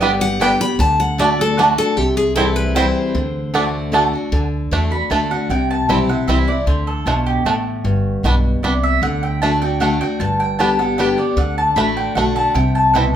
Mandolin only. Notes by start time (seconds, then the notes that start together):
0.01 B3 G4 D5 G5
0.40 B3 G4 D5 G5
1.19 A3 F#4 D5 A5
1.58 A3 F#4 D5 A5
2.36 C4 E4 C5 G5
2.75 C4 E4 C5 G5
3.54 A3 F#4 D5 A5
3.93 A3 F#4 D5 A5
4.92 B5
5.11 A5
5.31 F#5
5.50 G5
5.71 A5
5.89 G5
6.09 F#5
6.28 E5
6.48 D5
6.67 C5
6.87 A4
7.06 F4
7.26 G4
7.46 F#4
8.63 D5
8.83 E5
9.03 F#5
9.23 G5
9.42 A5
9.62 G5
9.81 F#5
10.01 G5
10.20 A5
10.40 G5
10.59 A5
10.79 F#5
10.98 G5
11.18 D5
11.38 F#5
11.58 A5
11.76 B5
11.97 G5
12.15 F#5
12.36 A5
12.54 G5
12.75 A5
12.94 F#5